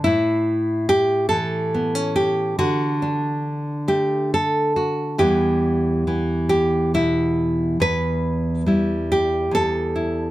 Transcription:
0.04 2.60 A2 medium
0.04 0.88 E4 medium
0.89 1.28 G4 loud
1.29 2.55 E3 medium
1.29 2.15 A4 loud
1.74 1.95 B3 medium
1.95 2.59 C#4 soft
2.16 2.58 G4 medium
2.59 5.20 D3 medium
2.59 3.88 F#4 medium
3.02 5.14 D4 medium
3.88 5.14 A3 medium
3.88 4.32 G4 medium
4.34 4.76 A4 medium
4.76 5.15 F#4 soft
5.18 7.79 E2 medium
5.18 6.07 E3 medium
5.18 8.66 G3 soft
5.18 6.07 B3 soft
5.18 6.48 G4 medium
6.07 8.66 E3 medium
6.07 8.67 B3 soft
6.49 6.94 G4 loud
6.94 7.76 B2 medium
6.94 7.81 E4 medium
7.80 9.50 E2 medium
7.80 9.10 B4 loud
8.66 10.31 G3 medium
8.66 9.95 E4 soft
9.12 9.53 G4 medium
9.51 10.31 E2 medium
9.51 10.31 A4 medium
9.96 10.31 E4 soft

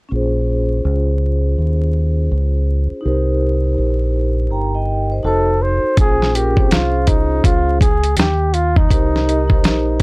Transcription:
0.09 0.82 A#1 medium
0.09 2.99 C#4 medium
0.09 3.00 F4 medium
0.13 3.02 G#4 medium
0.13 3.03 C5 medium
0.85 1.55 C#2 medium
1.58 2.28 D#2 medium
2.31 2.88 C#2 medium
2.91 muted fingered electric bass stroke soft
3.01 5.18 D#4 medium
3.01 5.20 G4 medium
3.05 3.75 C2 medium
3.05 5.21 A#4 medium
3.05 4.50 C5 medium
3.78 4.51 A#1 medium
4.51 5.21 G1 medium
4.51 4.73 G5 soft
4.51 4.73 A#5 medium
4.75 5.09 D#5 medium
4.75 5.09 G5 medium
5.11 5.25 C5 soft
5.11 5.46 D#5 medium
5.23 5.81 F1 medium
5.23 5.97 D#4 medium
5.23 5.98 F#4 medium
5.23 5.64 A4 medium
5.23 5.98 A4 medium
5.23 5.98 C5 medium
5.62 5.98 C5 medium
5.96 6.70 A#1 medium
5.96 6.29 C#4 medium
5.96 6.30 F4 medium
5.96 6.30 G#4 medium
5.96 6.37 G#4 loud
5.96 6.31 C5 medium
5.96 kick loud
5.96 closed hi-hat medium
6.22 snare soft
6.33 6.53 C#4 medium
6.33 6.53 F4 medium
6.33 6.73 G4 medium
6.33 6.54 G#4 medium
6.33 6.55 A#4 medium
6.33 closed hi-hat medium
6.56 6.61 C4 medium
6.56 7.77 F4 medium
6.56 7.77 G#4 medium
6.56 7.78 C5 medium
6.56 kick medium
6.62 7.80 C#4 medium
6.70 7.40 C2 medium
6.70 7.10 F4 medium
6.70 snare loud
6.70 closed hi-hat medium
7.07 7.46 D#4 medium
7.07 kick medium
7.07 closed hi-hat medium
7.44 8.14 C#2 medium
7.44 7.80 F4 medium
7.44 kick medium
7.44 closed hi-hat medium
7.81 8.15 G#4 medium
7.81 kick medium
7.81 closed hi-hat medium
8.04 closed hi-hat medium
8.17 8.86 D#2 medium
8.17 8.55 G4 medium
8.17 snare medium
8.17 closed hi-hat medium
8.54 8.79 F4 medium
8.54 closed hi-hat medium
8.76 10.03 D#4 medium
8.76 kick medium
8.89 9.60 C2 medium
8.89 9.22 D#4 medium
8.89 9.22 G4 medium
8.89 9.23 A#4 medium
8.89 9.24 C5 medium
8.89 kick loud
8.89 closed hi-hat medium
9.16 snare soft
9.25 9.45 D#4 medium
9.25 9.46 G4 medium
9.25 9.46 A#4 medium
9.25 9.47 D#5 medium
9.25 closed hi-hat medium
9.48 10.03 D#4 medium
9.48 10.03 G4 medium
9.48 10.03 A#4 medium
9.48 10.03 C5 medium
9.48 kick medium
9.63 10.03 A#1 medium
9.63 snare loud
9.63 closed hi-hat medium

